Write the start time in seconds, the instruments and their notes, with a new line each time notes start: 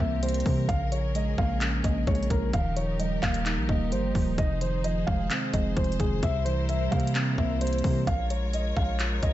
Already playing: tine electric piano C3 E3 G3 C4, string section E3 C4 G4 A#4
0.00 808-style bass C2, tine electric piano A#3, grand piano E5, kick
0.23 tine electric piano G3, grand piano C5, closed hi-hat
0.29 closed hi-hat
0.34 closed hi-hat
0.40 closed hi-hat
0.46 808-style bass C3, tine electric piano E3, kick, open hi-hat
0.69 808-style bass A#1, tine electric piano C#3, string section F3 C#4 G#4, grand piano F5, kick, closed hi-hat
0.92 tine electric piano F3, grand piano C#5, closed hi-hat
1.15 tine electric piano G#3, grand piano D#5, closed hi-hat
1.38 808-style bass A#1, tine electric piano A#3, grand piano F5, kick
1.61 tine electric piano C#4, clap, closed hi-hat
1.84 808-style bass A#1, tine electric piano A#3, grand piano D#5, kick, closed hi-hat
2.07 808-style bass A#1, tine electric piano G#3, grand piano C#5, kick, closed hi-hat
2.15 closed hi-hat
2.23 closed hi-hat
2.30 808-style bass A#1, tine electric piano F3, grand piano A#4, kick, closed hi-hat
2.53 808-style bass D#1, tine electric piano D#3, string section D#4 G4 A#4, grand piano F5, kick, closed hi-hat
2.77 tine electric piano F3, grand piano C#5, closed hi-hat
2.99 tine electric piano G3, grand piano D#5, closed hi-hat
3.22 808-style bass D#1, tine electric piano A#3, grand piano F5, kick, clap, closed hi-hat
3.34 closed hi-hat
3.46 tine electric piano D#4, clap, closed hi-hat
3.57 808-style bass A#1
3.69 808-style bass D#1, tine electric piano A#3, grand piano D#5, kick
3.92 808-style bass G1, tine electric piano G3, grand piano C5, closed hi-hat
4.15 808-style bass D#1, tine electric piano F3, kick, open hi-hat
4.38 808-style bass F1, tine electric piano C3, string section G#4 C5, grand piano D#5, kick, closed hi-hat
4.61 tine electric piano D#3, grand piano C5, closed hi-hat
4.84 tine electric piano F3, grand piano D#5, closed hi-hat
5.07 808-style bass F1, tine electric piano G#3, grand piano F5, kick
5.30 tine electric piano C4, clap, closed hi-hat
5.53 808-style bass F1, tine electric piano G#3, grand piano D#5, kick, closed hi-hat
5.76 808-style bass F1, tine electric piano F3, grand piano C5, kick, closed hi-hat
5.84 closed hi-hat
5.92 closed hi-hat
5.99 808-style bass F1, tine electric piano D#3, grand piano G#4, kick, closed hi-hat
6.23 808-style bass C2, tine electric piano C3, string section G3 E4 A#4, grand piano E5, kick, closed hi-hat
6.45 tine electric piano E3, grand piano C5, closed hi-hat
6.69 tine electric piano G3, grand piano E5, closed hi-hat
6.91 808-style bass C3, tine electric piano A#3, grand piano F5, kick, closed hi-hat
7.00 closed hi-hat
7.07 closed hi-hat
7.15 tine electric piano C4, clap, closed hi-hat
7.38 808-style bass C2, tine electric piano A#3, grand piano E5, kick
7.61 tine electric piano G3, grand piano C5, closed hi-hat
7.67 closed hi-hat
7.73 closed hi-hat
7.78 closed hi-hat
7.84 808-style bass C3, tine electric piano E3, kick, open hi-hat
8.07 808-style bass A#1, string section G#3 F4 A#4 C#5, grand piano F5, kick, closed hi-hat
8.30 grand piano C#5, closed hi-hat
8.53 grand piano D#5, closed hi-hat
8.77 808-style bass A#1, grand piano F5, kick
9.00 clap, closed hi-hat
9.23 808-style bass A#1, grand piano D#5, kick, closed hi-hat